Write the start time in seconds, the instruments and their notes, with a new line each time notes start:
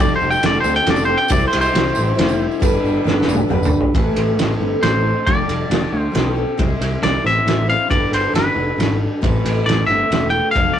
Already playing: string section F4
0.00 picked electric bass F1, steel-string acoustic guitar F3 G3 C4 G4 A4, reed electric piano F4 G4 A4, string section G4 A4, clean electric guitar D5
0.16 clean electric guitar C5
0.21 picked electric bass F1, tambourine
0.31 clean electric guitar G5, tambourine
0.42 picked electric bass F1, steel-string acoustic guitar G3 C4 G4 A4, reed electric piano F4 G4 A4, clean electric guitar D5, snare, ride
0.53 tambourine
0.60 picked electric bass D2, steel-string acoustic guitar A4, clean electric guitar C5, tambourine
0.66 steel-string acoustic guitar C4 G4
0.75 clean electric guitar G5, tambourine
0.85 picked electric bass F1, steel-string acoustic guitar G3 C4 G4 A4, reed electric piano F4 G4 A4, snare, ride
0.90 clean electric guitar D5
0.96 tambourine
1.05 steel-string acoustic guitar G4 A4, clean electric guitar C5
1.10 steel-string acoustic guitar C4
1.18 clean electric guitar G5, tambourine
1.28 picked electric bass C2, steel-string acoustic guitar C3 E3 G3 C4 E4 C5, reed electric piano E4 G4 C5, string section E4 G4 C5, clean electric guitar D5, kick, ride, tambourine
1.48 clean electric guitar C5, tambourine
1.53 picked electric bass C2, ride
1.61 clean electric guitar C5, tambourine
1.72 picked electric bass C2, steel-string acoustic guitar G3 C4 E4 C5, reed electric piano E4 G4 C5, ride
1.76 snare
1.85 tambourine
1.95 picked electric bass A1, tambourine
2.07 tambourine
2.15 picked electric bass F1, steel-string acoustic guitar G3 C4 E4 C5, reed electric piano E4 G4 C5, ride
2.20 snare
2.28 tambourine
2.51 tambourine
2.60 picked electric bass G1, steel-string acoustic guitar G3 D4 A4 B4, string section G4 A4 B4, reed electric piano G4 A4 B4, kick, ride, tambourine
2.84 picked electric bass G1, tambourine
3.04 picked electric bass G1, steel-string acoustic guitar G3 D4 A4 B4, reed electric piano G4 A4 B4, snare, tambourine
3.21 snare
3.28 picked electric bass F1, tambourine
3.35 high tom
3.40 tambourine
3.49 picked electric bass G1, steel-string acoustic guitar G3 D4 A4 B4, reed electric piano G4 A4 B4 D5, mid tom
3.63 mid tom, tambourine
3.75 tambourine
3.81 floor tom
3.94 picked electric bass A1, steel-string acoustic guitar A2 E3 A3 C4 A4 B4, kick, ride
4.16 picked electric bass A1, ride
4.39 picked electric bass A1, steel-string acoustic guitar A3 C4 A4 B4, snare, ride
4.60 picked electric bass G1, steel-string acoustic guitar A3 C4 A4 B4
4.82 picked electric bass A1, steel-string acoustic guitar A3 C4, clean electric guitar C5, snare, ride
5.26 picked electric bass F1, steel-string acoustic guitar F3 G3 C4 G4 A4, clean electric guitar D5, kick, ride
5.48 picked electric bass F1, ride
5.70 picked electric bass F1, steel-string acoustic guitar G3 C4 G4 A4, snare, ride
5.92 picked electric bass D2
6.01 clean electric guitar C5
6.12 picked electric bass B1, steel-string acoustic guitar G3 C4 G4 A4, snare, ride
6.35 steel-string acoustic guitar C4 G4 A4
6.58 picked electric bass C2, steel-string acoustic guitar C3 E3 G3 C4 E4 C5, kick, ride
6.81 picked electric bass C2, ride
7.02 picked electric bass C2, steel-string acoustic guitar G3 C4 E4 C5, clean electric guitar D5, snare, ride
7.24 picked electric bass A1, steel-string acoustic guitar G3 C4 E4 C5, clean electric guitar E5
7.45 picked electric bass A1, steel-string acoustic guitar G3 C4 E4 C5, snare, ride
7.67 steel-string acoustic guitar G3 C4 E4 C5, clean electric guitar F5
7.88 picked electric bass G1, steel-string acoustic guitar G3 D4 A4 B4, clean electric guitar D5, kick, ride
8.11 picked electric bass G1, clean electric guitar C5, ride
8.32 picked electric bass G1, steel-string acoustic guitar G3 D4 A4 B4, clean electric guitar B4, ride
8.36 snare
8.55 picked electric bass F1, steel-string acoustic guitar D4 A4 B4
8.77 picked electric bass G#1, steel-string acoustic guitar G3 D4 A4 B4, ride
8.81 snare
9.21 picked electric bass A1, steel-string acoustic guitar A2 E3 A3 C4 A4 B4, kick, ride
9.45 picked electric bass A1, ride
9.64 picked electric bass A1, steel-string acoustic guitar A3 C4 A4 B4, clean electric guitar D5
9.69 snare, ride
9.87 picked electric bass G1, steel-string acoustic guitar A3 C4 A4 B4, clean electric guitar E5
10.10 picked electric bass E1, steel-string acoustic guitar A3 C4 A4 B4, snare, ride
10.30 clean electric guitar G5
10.51 steel-string acoustic guitar F3 G3, clean electric guitar F5
10.56 picked electric bass F1, steel-string acoustic guitar C4 G4 A4, kick, ride
10.74 clean electric guitar D5